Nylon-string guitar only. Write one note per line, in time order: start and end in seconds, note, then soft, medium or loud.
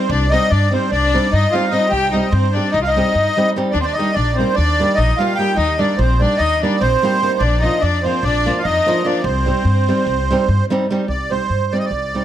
0.32 0.47 G3 medium
0.32 0.47 C4 soft
0.32 0.47 D#4 medium
0.32 0.47 G4 medium
0.72 0.87 G3 medium
0.72 0.87 C4 medium
0.72 0.88 D#4 medium
0.72 0.88 G4 medium
1.14 1.29 G3 medium
1.14 1.29 C4 medium
1.14 1.29 D#4 medium
1.14 1.29 G4 medium
1.53 1.68 G3 medium
1.53 1.68 C4 medium
1.53 1.69 D#4 medium
1.53 1.69 G4 medium
1.72 1.87 G3 medium
1.72 1.87 C4 medium
1.72 1.88 D#4 medium
1.72 1.88 G4 medium
2.13 2.28 G3 medium
2.13 2.28 C4 soft
2.13 2.29 D#4 medium
2.13 2.29 G4 medium
2.55 2.70 G3 medium
2.55 2.70 C4 soft
2.55 2.70 D#4 soft
2.55 2.71 G4 medium
2.96 3.11 G3 medium
2.96 3.11 C4 medium
2.96 3.12 D#4 medium
2.96 3.12 G4 medium
3.37 3.51 G3 medium
3.37 3.52 C4 medium
3.37 3.52 D#4 medium
3.37 3.52 G4 medium
3.56 3.70 G3 medium
3.56 3.71 C4 medium
3.56 3.71 D#4 medium
3.56 3.71 G4 medium
3.98 4.12 G3 medium
3.98 4.12 A#3 soft
3.98 4.12 D#4 soft
3.98 4.13 G4 medium
4.38 4.53 G3 medium
4.38 4.53 A#3 medium
4.38 4.54 D#4 medium
4.38 4.54 G4 medium
4.80 4.94 G3 medium
4.80 4.95 A#3 soft
4.80 4.95 D#4 medium
4.80 4.95 G4 medium
5.19 5.34 G3 medium
5.19 5.34 A#3 medium
5.19 5.34 D#4 medium
5.19 5.35 G4 medium
5.39 5.53 G3 medium
5.39 5.53 A#3 medium
5.39 5.54 D#4 medium
5.39 5.54 G4 medium
5.79 5.94 G3 medium
5.79 5.94 A#3 soft
5.79 5.95 D#4 medium
5.79 5.95 G4 medium
6.20 6.35 G3 soft
6.20 6.36 A#3 soft
6.20 6.36 D#4 soft
6.20 6.36 G4 medium
6.63 6.78 G3 medium
6.63 6.78 A#3 medium
6.63 6.78 D#4 medium
6.63 6.78 G4 medium
7.03 7.17 G3 medium
7.03 7.18 A#3 medium
7.03 7.18 D#4 medium
7.03 7.19 G4 medium
7.22 7.37 G3 medium
7.22 7.37 A#3 medium
7.22 7.38 D#4 medium
7.22 7.38 G4 medium
7.63 7.78 F3 medium
7.63 7.78 A#3 medium
7.63 7.79 D4 medium
7.63 7.79 F4 medium
8.04 8.19 F3 medium
8.04 8.20 A#3 soft
8.04 8.20 D4 medium
8.04 8.20 F4 medium
8.46 8.61 F3 medium
8.46 8.61 A#3 medium
8.46 8.61 D4 medium
8.46 8.62 F4 medium
8.86 9.01 F3 medium
8.86 9.01 A#3 medium
8.86 9.02 D4 medium
8.86 9.02 F4 medium
9.05 9.20 F3 medium
9.05 9.20 A#3 medium
9.05 9.20 D4 medium
9.05 9.21 F4 medium
9.46 9.61 G3 medium
9.46 9.62 C4 medium
9.46 9.62 D#4 soft
9.46 9.62 G4 medium
9.88 10.03 G3 medium
9.88 10.04 C4 medium
9.88 10.04 D#4 medium
9.88 10.04 G4 medium
10.31 10.45 G3 medium
10.31 10.46 C4 medium
10.31 10.46 D#4 medium
10.31 10.46 G4 medium
10.70 10.85 G3 medium
10.70 10.85 C4 medium
10.70 10.85 D#4 medium
10.70 10.86 G4 medium
10.90 11.05 G3 medium
10.90 11.05 C4 medium
10.90 11.05 D#4 medium
10.90 11.05 G4 medium
11.30 11.45 G3 soft
11.30 11.46 C4 soft
11.30 11.46 D#4 soft
11.30 11.46 G4 medium
11.72 11.87 G3 medium
11.72 11.87 C4 medium
11.72 11.88 D#4 soft
11.72 11.88 G4 medium
12.14 12.25 G3 medium
12.14 12.25 C4 medium
12.14 12.25 D#4 medium
12.14 12.25 G4 medium